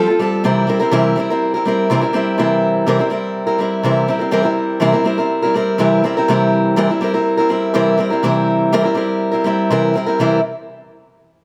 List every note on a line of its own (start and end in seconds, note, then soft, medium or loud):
0.07 0.19 C4 medium
0.07 0.20 F4 medium
0.07 0.19 A4 medium
0.19 0.43 G3 medium
0.19 0.43 C4 medium
0.19 0.45 F4 medium
0.19 0.45 A4 medium
0.44 0.68 C3 medium
0.44 0.68 E3 medium
0.44 0.66 G3 loud
0.44 0.67 C4 medium
0.44 0.68 E4 medium
0.44 0.68 A#4 loud
0.67 0.80 G3 medium
0.67 0.80 C4 medium
0.67 0.79 E4 medium
0.67 0.78 A#4 medium
0.80 0.92 G3 medium
0.80 0.91 C4 medium
0.80 0.92 E4 medium
0.80 0.92 A#4 medium
0.91 1.16 C3 medium
0.91 1.17 E3 loud
0.91 1.15 G3 loud
0.91 1.16 C4 loud
0.91 1.17 E4 loud
0.91 1.17 A#4 loud
1.16 1.28 G3 medium
1.16 1.29 C4 medium
1.16 1.30 E4 medium
1.16 1.29 A#4 medium
1.30 1.55 G3 medium
1.30 1.54 C4 medium
1.30 1.54 E4 medium
1.30 1.53 A#4 medium
1.54 1.64 G3 soft
1.54 1.65 C4 medium
1.54 1.66 E4 medium
1.54 1.66 A#4 medium
1.65 1.90 G3 medium
1.65 1.90 C4 medium
1.65 1.91 E4 medium
1.65 1.91 A#4 medium
1.90 2.02 C3 medium
1.90 2.02 E3 medium
1.90 2.02 G3 medium
1.90 2.02 C4 loud
1.90 2.01 E4 loud
1.90 2.00 A#4 loud
2.01 2.12 G3 soft
2.01 2.13 C4 soft
2.01 2.14 E4 medium
2.01 2.14 A#4 medium
2.13 2.38 G3 medium
2.13 2.38 C4 medium
2.13 2.38 E4 medium
2.13 2.38 A#4 medium
2.38 2.85 C3 medium
2.38 2.87 E3 medium
2.38 2.87 G3 medium
2.38 2.87 C4 medium
2.38 2.88 E4 medium
2.38 2.88 A#4 medium
2.86 2.99 C3 medium
2.86 2.99 E3 medium
2.86 2.99 G3 medium
2.86 2.99 C4 medium
2.86 2.99 E4 medium
2.86 2.98 A#4 medium
2.99 3.09 G3 medium
2.99 3.10 C4 medium
2.99 3.11 E4 medium
2.99 3.11 A#4 medium
3.10 3.47 G3 medium
3.10 3.47 C4 medium
3.10 3.46 E4 medium
3.10 3.45 A#4 medium
3.47 3.57 G3 soft
3.47 3.59 C4 soft
3.47 3.60 E4 medium
3.47 3.59 A#4 medium
3.59 3.83 G3 medium
3.59 3.84 C4 medium
3.59 3.84 E4 medium
3.59 3.84 A#4 medium
3.83 4.08 C3 medium
3.83 4.09 E3 medium
3.83 4.07 G3 medium
3.83 4.07 C4 medium
3.83 4.08 E4 medium
3.83 4.09 A#4 medium
4.08 4.20 G3 medium
4.08 4.20 C4 medium
4.08 4.19 E4 medium
4.08 4.18 A#4 medium
4.19 4.30 G3 soft
4.19 4.31 C4 soft
4.19 4.31 E4 soft
4.19 4.32 A#4 soft
4.31 4.45 C3 medium
4.31 4.45 E3 medium
4.31 4.45 G3 medium
4.31 4.44 C4 medium
4.31 4.43 E4 medium
4.31 4.41 A#4 medium
4.43 4.80 G3 soft
4.43 4.81 C4 soft
4.43 4.80 E4 medium
4.43 4.81 A#4 medium
4.80 4.93 C3 medium
4.80 4.94 E3 medium
4.80 4.94 G3 medium
4.80 4.93 C4 loud
4.80 4.92 E4 loud
4.80 4.91 A#4 loud
4.92 5.03 G3 soft
4.92 5.04 C4 medium
4.92 5.05 E4 medium
4.92 5.05 A#4 medium
5.04 5.18 G3 medium
5.04 5.18 C4 medium
5.04 5.18 E4 medium
5.04 5.17 A#4 medium
5.18 5.44 G3 soft
5.18 5.43 C4 soft
5.18 5.43 E4 medium
5.18 5.41 A#4 medium
5.42 5.53 G3 soft
5.42 5.54 C4 soft
5.42 5.55 E4 medium
5.42 5.55 A#4 medium
5.54 5.78 G3 medium
5.54 5.79 C4 medium
5.54 5.79 E4 medium
5.54 5.79 A#4 medium
5.78 6.03 C3 medium
5.78 6.04 E3 medium
5.78 6.02 G3 medium
5.78 6.03 C4 medium
5.78 6.04 E4 medium
5.78 6.04 A#4 medium
6.04 6.16 G3 medium
6.04 6.16 C4 medium
6.04 6.17 E4 medium
6.04 6.16 A#4 medium
6.17 6.28 G3 medium
6.17 6.29 C4 medium
6.17 6.28 E4 soft
6.17 6.29 A#4 medium
6.28 6.75 C3 medium
6.28 6.77 E3 medium
6.28 6.77 G3 medium
6.28 6.77 C4 medium
6.28 6.78 E4 medium
6.28 6.78 A#4 medium
6.76 6.89 C3 loud
6.76 6.90 E3 medium
6.76 6.89 G3 loud
6.76 6.90 C4 loud
6.76 6.90 E4 medium
6.76 6.88 A#4 loud
6.90 7.00 G3 soft
6.90 7.01 C4 soft
6.90 7.02 E4 medium
6.90 7.02 A#4 medium
7.01 7.14 G3 medium
7.01 7.14 C4 medium
7.01 7.13 E4 medium
7.01 7.13 A#4 medium
7.14 7.40 G3 soft
7.14 7.39 C4 soft
7.14 7.38 E4 soft
7.14 7.36 A#4 medium
7.37 7.48 G3 medium
7.37 7.49 C4 medium
7.37 7.50 E4 medium
7.37 7.50 A#4 medium
7.49 7.73 G3 medium
7.49 7.74 C4 medium
7.49 7.74 E4 medium
7.49 7.74 A#4 medium
7.74 7.99 C3 medium
7.74 7.99 E3 medium
7.74 7.96 G3 medium
7.74 7.97 C4 medium
7.74 7.98 E4 loud
7.74 7.99 A#4 medium
7.98 8.11 G3 medium
7.98 8.11 C4 medium
7.98 8.10 E4 medium
7.98 8.09 A#4 medium
8.10 8.22 G3 soft
8.10 8.23 C4 medium
8.10 8.23 E4 medium
8.10 8.23 A#4 medium
8.23 8.71 C3 medium
8.23 8.72 E3 medium
8.23 8.72 G3 medium
8.23 8.72 C4 medium
8.23 8.73 E4 medium
8.23 8.73 A#4 loud
8.72 8.85 C3 medium
8.72 8.85 E3 medium
8.72 8.85 G3 loud
8.72 8.84 C4 loud
8.72 8.84 E4 loud
8.72 8.82 A#4 loud
8.83 8.93 G3 soft
8.83 8.94 C4 medium
8.83 8.96 E4 medium
8.83 8.96 A#4 medium
8.95 9.32 G3 medium
8.95 9.33 C4 medium
8.95 9.32 E4 medium
8.95 9.30 A#4 medium
9.31 9.43 G3 soft
9.31 9.44 C4 medium
9.31 9.45 E4 medium
9.31 9.45 A#4 medium
9.44 9.69 G3 medium
9.44 9.70 C4 medium
9.44 9.71 E4 medium
9.44 9.71 A#4 medium
9.71 9.95 C3 medium
9.71 9.95 E3 medium
9.71 9.93 G3 medium
9.71 9.94 C4 medium
9.71 9.95 E4 medium
9.71 9.96 A#4 medium
9.94 10.06 G3 medium
9.94 10.07 C4 medium
9.94 10.06 E4 medium
9.94 10.05 A#4 medium
10.06 10.19 G3 soft
10.06 10.20 C4 soft
10.06 10.19 E4 soft
10.06 10.19 A#4 medium
10.19 10.39 C3 medium
10.19 10.39 E3 medium
10.19 10.39 G3 medium
10.19 10.40 C4 medium
10.19 10.40 E4 loud
10.19 10.40 A#4 medium